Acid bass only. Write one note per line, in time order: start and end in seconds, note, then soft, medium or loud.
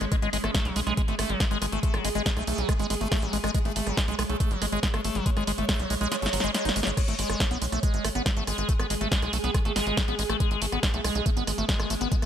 0.01 0.05 G#3 medium
0.12 0.16 G#3 loud
0.22 0.30 G#3 loud
0.33 0.37 G#3 loud
0.44 0.51 A3 medium
0.55 0.67 A3 medium
0.65 0.75 F#3 medium
0.76 0.80 G#3 loud
0.87 0.94 G#3 loud
0.97 1.02 G#3 loud
1.08 1.15 A3 medium
1.19 1.31 A3 medium
1.30 1.40 F#3 medium
1.40 1.45 G#3 loud
1.51 1.58 G#3 loud
1.62 1.66 G#3 loud
1.72 1.80 A3 medium
1.83 1.95 A3 medium
1.94 2.04 F#3 medium
2.05 2.09 G#3 loud
2.15 2.23 G#3 loud
2.26 2.30 G#3 loud
2.37 2.44 A3 medium
2.47 2.60 A3 medium
2.58 2.68 F#3 medium
2.69 2.73 G#3 loud
2.79 2.87 G#3 loud
2.90 2.95 G#3 loud
3.01 3.08 A3 medium
3.12 3.24 A3 medium
3.22 3.33 F#3 medium
3.33 3.37 G#3 loud
3.44 3.51 G#3 loud
3.54 3.59 G#3 loud
3.65 3.73 A3 medium
3.76 3.88 A3 medium
3.87 3.97 F#3 medium
3.97 4.02 G#3 loud
4.08 4.15 G#3 loud
4.19 4.23 G#3 loud
4.29 4.37 A3 medium
4.40 4.52 A3 medium
4.51 4.61 F#3 medium
4.62 4.66 G#3 loud
4.72 4.80 G#3 loud
4.83 4.87 G#3 loud
4.94 5.01 A3 medium
5.05 5.17 A3 medium
5.15 5.25 F#3 medium
5.26 5.30 G#3 loud
5.37 5.44 G#3 loud
5.47 5.52 G#3 loud
5.58 5.65 A3 medium
5.69 5.81 A3 medium
5.80 5.90 F#3 medium
5.90 5.95 G#3 loud
6.01 6.08 G#3 loud
6.12 6.16 G#3 loud
6.22 6.30 A3 medium
6.33 6.43 F#3 medium
6.44 6.51 G#3 loud
6.54 6.65 G#3 medium
6.65 6.70 D#4 medium
6.76 6.80 G#3 medium
6.87 6.91 G#3 medium
6.97 7.02 G#3 medium
7.08 7.15 A3 medium
7.19 7.29 G#3 medium
7.29 7.40 G#3 medium
7.40 7.45 A3 medium
7.51 7.58 B3 medium
7.62 7.66 G#3 medium
7.72 7.80 A3 medium
7.83 7.93 G#3 medium
7.94 8.04 G#3 medium
8.04 8.09 A3 medium
8.15 8.23 B3 medium
8.26 8.30 G#3 medium
8.37 8.44 A3 medium
8.47 8.58 G#3 medium
8.58 8.68 G#3 medium
8.69 8.73 A3 medium
8.80 8.87 B3 medium
8.90 8.95 G#3 medium
9.01 9.08 A3 medium
9.12 9.22 G#3 medium
9.22 9.33 G#3 medium
9.33 9.37 A3 medium
9.44 9.51 B3 medium
9.55 9.59 G#3 medium
9.65 9.73 A3 medium
9.76 9.86 G#3 medium
9.87 9.97 G#3 medium
9.97 10.02 A3 medium
10.08 10.15 B3 medium
10.19 10.23 G#3 medium
10.30 10.37 A3 medium
10.40 10.50 G#3 medium
10.51 10.61 G#3 medium
10.62 10.66 A3 medium
10.72 10.80 B3 medium
10.83 10.87 G#3 medium
10.94 11.01 A3 medium
11.04 11.15 G#3 medium
11.15 11.25 G#3 medium
11.26 11.30 A3 medium
11.37 11.44 B3 medium
11.47 11.52 G#3 medium
11.58 11.65 A3 medium
11.69 11.79 G#3 medium
11.79 11.90 G#3 medium
11.90 11.95 A3 medium
12.01 12.08 B3 medium
12.12 12.16 G#3 medium
12.22 12.26 A3 medium